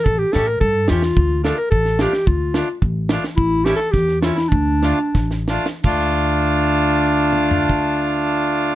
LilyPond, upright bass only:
\new Staff \with { instrumentName = "Upright bass" } { \clef bass \time 2/4 \key d \minor \tempo 4 = 106 a,,8 a,8 g,8 e,8 | d,4 a,,4 | d,4 a,,4 | a,,4 e,4 |
d,4 a,,4 | d,2~ | d,2 | }